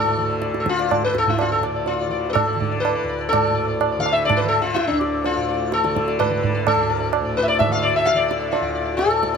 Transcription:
0.00 1.12 D2 medium
0.00 1.60 A2 medium
0.00 0.17 D3 medium
0.00 0.59 A4 loud
0.07 0.17 D5 soft
0.17 0.64 D3 medium
0.17 0.28 D5 soft
0.29 0.40 D5 soft
0.42 0.64 D5 soft
0.42 tabla te medium
0.54 tabla te medium
0.60 2.08 D3 medium
0.60 0.66 A4 medium
0.66 1.04 F4 loud
0.66 tabla ke medium
0.79 0.89 D5 soft
0.79 tabla te medium
0.90 1.13 D5 soft
0.90 tabla na medium
0.90 tabla ge medium
1.04 1.16 B4 medium
1.12 3.02 D2 medium
1.12 tabla te medium
1.18 1.29 A4 medium
1.27 1.41 E4 medium
1.27 tabla ge medium
1.39 1.51 F4 medium
1.39 tabla na medium
1.52 1.63 A4 medium
1.60 3.49 A2 medium
1.60 tabla na medium
1.64 1.75 D5 soft
1.76 1.98 D5 soft
1.86 2.27 F4 medium
1.86 tabla tin medium
2.01 2.09 D5 soft
2.08 2.55 D3 medium
2.08 2.34 D5 soft
2.30 2.79 A4 medium
2.30 2.33 B4 medium
2.35 tabla na medium
2.35 tabla ge medium
2.47 2.59 D5 soft
2.55 3.97 D3 medium
2.60 2.70 D5 soft
2.60 tabla ge medium
2.71 2.94 D5 soft
2.80 3.28 B4 medium
2.85 tabla na medium
2.95 3.08 D5 soft
3.02 4.89 D2 medium
3.09 3.19 D5 soft
3.21 3.43 D5 soft
3.29 4.05 A4 loud
3.33 tabla na loud
3.33 tabla ge medium
3.44 3.53 D5 soft
3.49 5.36 A2 medium
3.54 3.67 D5 soft
3.68 3.79 D5 soft
3.80 3.91 D5 soft
3.80 tabla na medium
3.92 4.12 D5 soft
3.97 4.43 D3 medium
3.97 4.13 F5 loud
4.06 tabla na medium
4.12 4.25 E5 loud
4.25 4.39 D5 loud
4.30 tabla na medium
4.30 tabla ge medium
4.37 4.48 B4 medium
4.43 5.84 D3 medium
4.48 4.61 A4 medium
4.62 4.75 F4 medium
4.74 4.87 E4 loud
4.74 tabla te medium
4.87 6.74 D2 medium
4.87 4.98 D4 medium
5.01 5.22 D5 soft
5.01 tabla te medium
5.24 5.73 F4 medium
5.24 tabla tin medium
5.36 7.20 A2 medium
5.36 5.47 D5 soft
5.49 5.70 D5 soft
5.72 6.19 A4 loud
5.72 tabla te medium
5.84 6.29 D3 medium
5.84 5.94 D5 soft
5.84 tabla te medium
5.95 6.07 D5 soft
5.95 tabla ke medium
6.08 6.29 D5 soft
6.08 tabla te medium
6.19 6.67 B4 medium
6.19 tabla na medium
6.19 tabla ge medium
6.29 7.67 D3 medium
6.29 6.42 D5 soft
6.43 6.53 D5 soft
6.43 tabla ge medium
6.55 6.76 D5 soft
6.67 7.37 A4 loud
6.67 tabla na loud
6.67 tabla ge loud
6.74 8.60 D2 medium
6.79 6.88 D5 soft
6.89 6.99 D5 soft
7.00 7.11 D5 soft
7.12 7.24 D5 soft
7.12 tabla na medium
7.21 9.05 A2 medium
7.25 7.42 D5 soft
7.37 7.45 B4 loud
7.43 7.47 E5 medium
7.48 7.58 D5 loud
7.59 7.70 E5 loud
7.59 tabla na medium
7.59 tabla ge medium
7.67 8.14 D3 medium
7.72 7.84 F5 loud
7.83 7.95 D5 loud
7.96 8.07 E5 loud
8.05 8.18 F5 loud
8.05 tabla te medium
8.14 9.37 D3 medium
8.14 8.27 D5 medium
8.28 8.39 D5 soft
8.28 tabla te medium
8.40 8.61 D5 soft
8.52 8.97 F4 medium
8.52 tabla tin medium
8.61 9.37 D2 medium
8.61 8.74 D5 soft
8.75 8.84 D5 soft
8.85 9.08 D5 soft
8.97 9.37 A4 loud
8.97 tabla te medium
9.05 9.37 A2 medium
9.09 9.21 D5 soft
9.09 tabla te medium
9.22 9.33 D5 soft
9.22 tabla ke medium

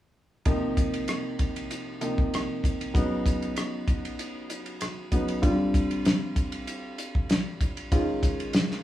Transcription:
0.45 1.98 C3 medium
0.45 1.98 F3 soft
0.45 1.98 A#3 soft
0.45 1.98 D#4 medium
0.45 kick medium
0.45 hi-hat pedal medium
0.45 ride medium
0.77 kick medium
0.77 hi-hat pedal medium
0.77 ride medium
0.94 ride soft
1.08 cross-stick medium
1.08 hi-hat pedal medium
1.08 ride medium
1.39 kick medium
1.39 hi-hat pedal medium
1.39 ride soft
1.56 ride soft
1.71 hi-hat pedal medium
1.71 ride medium
2.01 2.94 C3 soft
2.01 2.94 F3 soft
2.01 2.94 A#3 soft
2.01 2.93 D#4 soft
2.01 hi-hat pedal medium
2.01 ride soft
2.18 kick medium
2.34 cross-stick medium
2.34 hi-hat pedal medium
2.34 ride medium
2.64 kick medium
2.64 hi-hat pedal medium
2.64 ride soft
2.81 ride soft
2.94 5.07 C#3 medium
2.94 5.07 F#3 soft
2.94 5.08 B3 medium
2.94 5.08 D#4 medium
2.94 kick medium
2.94 hi-hat pedal medium
2.94 ride medium
3.26 kick medium
3.26 hi-hat pedal medium
3.26 ride medium
3.42 ride soft
3.56 cross-stick medium
3.56 hi-hat pedal medium
3.56 ride medium
3.88 kick medium
3.88 hi-hat pedal medium
3.88 ride soft
4.05 ride soft
4.19 hi-hat pedal medium
4.19 ride medium
4.50 hi-hat pedal medium
4.50 ride soft
4.66 ride soft
4.81 cross-stick medium
4.81 hi-hat pedal medium
4.81 ride medium
5.11 5.43 C#3 soft
5.11 5.43 F#3 soft
5.11 5.43 B3 soft
5.11 5.43 D#4 soft
5.11 kick medium
5.11 hi-hat pedal medium
5.11 ride soft
5.28 ride soft
5.42 7.88 D3 medium
5.42 7.87 G3 medium
5.42 7.87 C4 medium
5.42 7.87 F4 medium
5.42 kick medium
5.42 hi-hat pedal medium
5.42 ride medium
5.74 kick medium
5.74 hi-hat pedal medium
5.74 ride medium
5.91 ride soft
6.05 snare medium
6.05 hi-hat pedal medium
6.05 ride medium
6.36 kick medium
6.36 hi-hat pedal medium
6.36 ride soft
6.52 ride medium
6.67 hi-hat pedal medium
6.67 ride medium
6.98 hi-hat pedal medium
6.98 ride soft
7.15 kick medium
7.30 snare medium
7.30 hi-hat pedal medium
7.30 ride medium
7.61 kick medium
7.61 hi-hat pedal medium
7.61 ride soft
7.77 ride soft
7.92 8.83 D#3 medium
7.92 8.83 G#3 medium
7.92 8.83 C#4 medium
7.92 8.83 F4 medium
7.92 kick medium
7.92 hi-hat pedal medium
7.92 ride medium
8.23 kick medium
8.23 hi-hat pedal medium
8.23 ride medium
8.40 ride soft
8.53 snare medium
8.53 hi-hat pedal medium
8.53 ride medium
8.71 snare soft

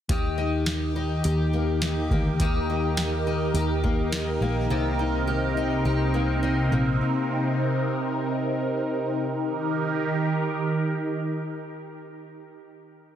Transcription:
0.09 1.20 D#2 medium
0.09 2.40 D#3 medium
0.09 4.67 D#3 medium
0.09 9.28 D#4 medium
0.09 4.67 G4 medium
0.09 0.67 G4 medium
0.09 9.28 A#4 medium
0.09 kick medium
0.09 closed hi-hat medium
0.38 0.95 D#4 soft
0.66 1.24 G4 medium
0.66 snare medium
0.66 closed hi-hat medium
0.96 1.82 D#4 medium
1.24 2.07 D#2 medium
1.24 2.41 G4 medium
1.24 closed hi-hat medium
1.53 2.11 A#3 soft
1.82 2.69 D#4 medium
1.82 snare loud
1.82 closed hi-hat medium
2.11 2.38 D2 medium
2.11 3.83 A#3 medium
2.11 kick medium
2.40 3.51 D#2 medium
2.40 4.70 D#3 medium
2.40 2.98 G4 medium
2.40 kick loud
2.40 closed hi-hat medium
2.70 3.27 D#4 soft
2.97 3.54 G4 soft
2.97 snare medium
2.97 closed hi-hat medium
3.27 4.12 D#4 medium
3.54 4.37 D#2 loud
3.54 4.71 G4 medium
3.54 closed hi-hat medium
3.84 4.42 A#3 medium
3.84 kick medium
4.12 4.99 D#4 medium
4.12 snare loud
4.12 closed hi-hat medium
4.41 4.68 A#1 medium
4.41 6.14 A#3 medium
4.69 5.81 C2 medium
4.69 9.27 C3 medium
4.69 7.01 C3 medium
4.69 9.27 C4 medium
4.69 5.27 G4 medium
4.99 5.57 D#4 soft
5.27 5.85 G4 medium
5.57 6.42 D#4 medium
5.85 6.68 C2 medium
5.85 7.57 G4 medium
6.14 6.72 A#3 soft
6.43 7.57 D#4 medium
6.71 6.99 A#1 medium
6.71 7.57 A#3 medium
9.31 12.39 D#3 medium
9.31 12.38 D#4 medium
9.31 12.38 G4 medium
9.31 12.39 A#4 medium

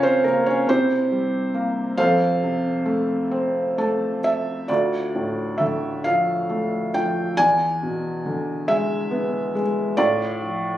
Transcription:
0.00 0.24 C#3 medium
0.00 0.48 C#4 medium
0.00 0.70 F4 medium
0.00 0.24 A#4 medium
0.00 0.25 C5 medium
0.00 0.46 C#5 loud
0.00 0.70 F5 medium
0.05 0.24 C4 medium
0.24 0.67 C#3 medium
0.24 0.45 A#3 medium
0.24 0.47 A#4 medium
0.46 0.67 C#4 medium
0.46 0.69 C#5 medium
0.67 1.93 C3 medium
0.67 1.95 C4 medium
0.67 1.95 E4 medium
0.67 1.95 G4 medium
0.67 1.97 C5 loud
1.12 1.95 G3 soft
1.54 1.96 A#3 medium
1.98 4.65 F2 medium
1.98 4.19 F4 medium
1.98 4.20 A4 medium
1.98 4.20 C5 medium
1.98 4.19 F5 medium
2.43 4.20 C3 medium
2.85 3.77 A3 medium
3.31 4.65 C4 medium
3.78 4.67 A3 medium
3.78 4.21 A5 medium
4.24 4.66 E5 medium
4.68 7.34 D2 medium
4.68 6.01 F4 soft
4.68 5.62 D5 medium
5.15 6.90 A2 soft
5.58 7.34 D3 soft
5.58 6.05 E5 medium
6.04 6.93 F3 medium
6.04 6.89 F5 medium
6.50 7.35 A3 soft
6.94 7.37 F3 soft
6.94 7.35 G5 medium
7.37 9.94 E2 medium
7.37 8.65 D5 medium
7.37 8.72 G#5 medium
7.83 9.51 B2 soft
8.25 9.94 D3 soft
8.68 9.54 G#3 medium
8.68 9.61 E5 medium
9.11 9.95 B3 soft
9.55 9.97 G#3 medium
9.97 10.78 A2 medium
9.97 10.78 F4 medium
9.97 10.78 D5 medium
10.42 10.78 F3 soft

